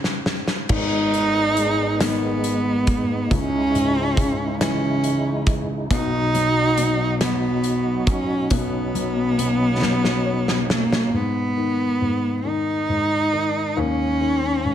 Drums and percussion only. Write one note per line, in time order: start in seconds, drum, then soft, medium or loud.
0.04 snare medium
0.26 snare medium
0.48 snare medium
0.69 kick loud
0.69 crash medium
1.14 closed hi-hat soft
1.57 closed hi-hat medium
2.00 snare loud
2.00 closed hi-hat medium
2.44 closed hi-hat soft
2.87 kick medium
2.87 closed hi-hat medium
3.31 kick loud
3.31 closed hi-hat medium
3.75 closed hi-hat soft
4.17 kick medium
4.17 closed hi-hat medium
4.61 snare loud
4.61 closed hi-hat medium
5.04 closed hi-hat medium
5.47 kick loud
5.47 closed hi-hat medium
5.91 kick loud
5.91 closed hi-hat medium
6.35 closed hi-hat medium
6.78 closed hi-hat medium
7.21 snare loud
7.21 closed hi-hat loud
7.64 closed hi-hat medium
8.07 kick loud
8.07 closed hi-hat medium
8.50 kick loud
8.50 closed hi-hat medium
8.95 closed hi-hat soft
9.39 closed hi-hat medium
9.82 snare medium
10.05 snare medium
10.48 snare medium
10.70 snare medium
10.93 snare medium